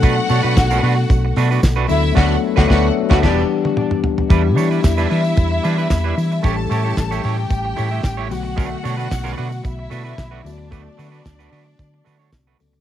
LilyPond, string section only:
\new Staff \with { instrumentName = "String section" } { \time 4/4 \key e \dorian \tempo 4 = 112 <fis' fis''>2. r8 <e' e''>8 | <fis' fis''>8 r16 <fis' fis''>16 <fis' fis''>8 r16 <fis' fis''>16 <d' d''>8 r4. | <e' e''>1 | <a' a''>4. <g' g''>2 <fis' fis''>8~ |
<fis' fis''>2 <e' e''>4. <d' d''>8~ | <d' d''>1 | }